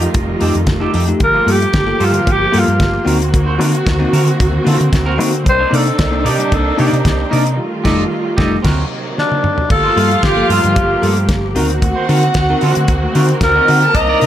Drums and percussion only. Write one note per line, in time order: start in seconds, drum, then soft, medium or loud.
0.02 closed hi-hat medium
0.14 kick loud
0.14 closed hi-hat medium
0.41 open hi-hat medium
0.55 closed hi-hat soft
0.67 kick loud
0.67 snare loud
0.67 closed hi-hat medium
0.94 open hi-hat medium
1.08 closed hi-hat soft
1.20 kick loud
1.20 closed hi-hat medium
1.48 open hi-hat medium
1.62 closed hi-hat soft
1.73 kick loud
1.73 snare loud
1.73 closed hi-hat medium
2.00 open hi-hat medium
2.14 closed hi-hat soft
2.27 kick loud
2.27 closed hi-hat medium
2.53 open hi-hat medium
2.68 closed hi-hat soft
2.80 kick loud
2.80 snare loud
2.80 closed hi-hat medium
3.07 open hi-hat medium
3.22 closed hi-hat soft
3.34 kick loud
3.34 closed hi-hat medium
3.61 open hi-hat medium
3.75 closed hi-hat soft
3.87 kick loud
3.87 snare loud
3.87 closed hi-hat medium
4.13 open hi-hat medium
4.27 closed hi-hat soft
4.40 kick loud
4.40 closed hi-hat medium
4.67 open hi-hat medium
4.81 closed hi-hat soft
4.93 kick loud
4.93 snare loud
4.93 closed hi-hat medium
5.20 open hi-hat medium
5.35 closed hi-hat soft
5.46 kick loud
5.46 closed hi-hat medium
5.74 open hi-hat medium
5.87 closed hi-hat soft
5.99 kick loud
5.99 snare loud
5.99 closed hi-hat medium
6.26 open hi-hat medium
6.40 closed hi-hat soft
6.52 kick loud
6.52 closed hi-hat medium
6.79 open hi-hat medium
6.93 closed hi-hat soft
7.05 kick loud
7.05 snare loud
7.05 closed hi-hat medium
7.33 open hi-hat medium
7.46 closed hi-hat soft
7.85 kick loud
7.85 snare loud
7.85 crash medium
8.38 kick loud
8.38 snare loud
8.65 kick loud
8.65 snare loud
8.65 crash medium
9.18 snare medium
9.32 high tom medium
9.44 mid tom medium
9.58 floor tom medium
9.70 kick loud
9.70 crash medium
9.97 open hi-hat medium
10.11 closed hi-hat soft
10.23 kick loud
10.23 snare loud
10.23 closed hi-hat medium
10.50 open hi-hat medium
10.64 closed hi-hat soft
10.76 kick loud
10.76 closed hi-hat medium
11.03 open hi-hat medium
11.17 closed hi-hat soft
11.29 kick loud
11.29 snare loud
11.29 closed hi-hat medium
11.56 open hi-hat medium
11.70 closed hi-hat soft
11.82 kick loud
11.82 closed hi-hat medium
12.09 open hi-hat medium
12.23 closed hi-hat soft
12.34 kick loud
12.34 snare loud
12.34 closed hi-hat medium
12.61 open hi-hat medium
12.75 closed hi-hat medium
12.88 kick loud
12.88 closed hi-hat medium
13.15 open hi-hat medium
13.29 closed hi-hat soft
13.41 kick loud
13.41 snare loud
13.41 closed hi-hat medium
13.68 open hi-hat medium
13.82 closed hi-hat soft
13.95 kick loud
13.95 closed hi-hat medium
14.21 open hi-hat medium